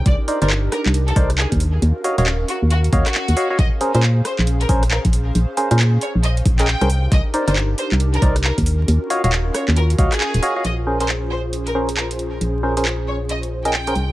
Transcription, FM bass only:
X:1
M:4/4
L:1/16
Q:"Swing 16ths" 1/4=136
K:Ebmix
V:1 name="FM bass" clef=bass
C,, z2 G,,,3 z C,,3 C,,3 E,,3 | E,, z2 E,,,3 z E,,3 E,, z2 E,, z2 | B,,, z2 B,,3 z B,,,3 B,,,3 B,,,3 | B,,, z2 B,,3 z B,,,3 B,,,3 C,,3 |
C,, z2 G,,,3 z C,,3 C,,3 E,,3 | E,, z2 E,,,3 z E,,3 D,, z2 E,,, z2 | B,,,16 | B,,,12- B,,,2 C,,2 |]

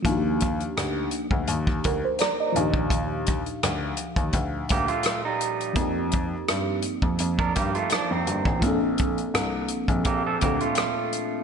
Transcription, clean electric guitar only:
X:1
M:4/4
L:1/16
Q:"Swing 16ths" 1/4=84
K:Eblyd
V:1 name="Clean electric guitar"
z16 | z8 z2 [B,G] [A,F]2 [G,E]3 | z8 z [DB] [B,G] [A,F] [F,D] [E,C]3 | z8 [B,G] [CA] [B,G] [A,F]4- [A,F] |]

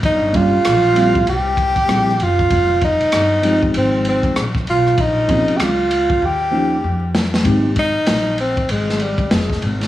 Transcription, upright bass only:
X:1
M:4/4
L:1/16
Q:"Swing 16ths" 1/4=97
K:Ab
V:1 name="Upright bass" clef=bass
G,,,3 z B,,,4 C,,4 B,,,2 _G,,,2 | F,,,3 z G,,,4 A,,,3 z B,,,2 _C,,2 | B,,,3 z D,,4 E,,4 F,,4 | A,,,3 z B,,,4 A,,,4 F,,,2 A,,,2 |]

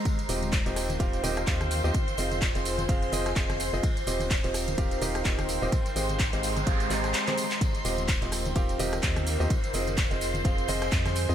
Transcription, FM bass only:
X:1
M:4/4
L:1/16
Q:"Swing 16ths" 1/4=127
K:Eb
V:1 name="FM bass" clef=bass
z2 E,,,3 E,,,3 E,,,2 E,,,2 E,,3 E,, | z2 F,,,3 F,,,3 F,,,2 F,,,2 F,,,3 F,,, | z2 E,,,3 E,,,3 E,,,2 E,,,2 E,,,3 E,,, | z2 A,,,3 A,,,3 A,,,2 A,,,2 z4 |
z2 E,,,3 E,,,3 E,,,2 E,,,2 E,,3 E,, | z2 F,,,3 F,,,3 F,,,2 F,,,2 F,,3 F,, |]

